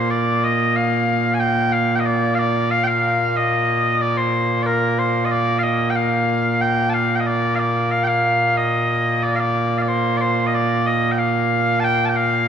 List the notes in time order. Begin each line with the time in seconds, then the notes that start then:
Already playing: A#2 A#3 C5
0.11 D5
0.44 D#5
0.76 F5
1.34 G#5
1.40 G5
1.72 F5
1.96 G5
2.00 D#5
2.05 D5
2.35 F5
2.39 D5
2.71 F5
2.84 F5 G5
3.36 D#5
4.01 D5
4.17 C5
4.62 A#4 D5
4.99 C5
5.25 D#5
5.31 D5
5.59 F5
5.63 D#5
5.90 G5
5.96 F5
6.61 G5
6.90 A5
6.94 F5
7.16 G5
7.20 D#5
7.26 D5
7.55 D5 F5
7.91 F5
8.04 F5 G5
8.57 D#5
9.22 D5
9.36 F5
9.40 D5
9.78 D5 F5
9.88 C5
10.17 C5 D5
10.46 D#5
10.54 D5
10.86 D#5
11.12 G5
11.18 F5
11.80 A5
11.84 G5
12.05 G5 A5
12.16 F5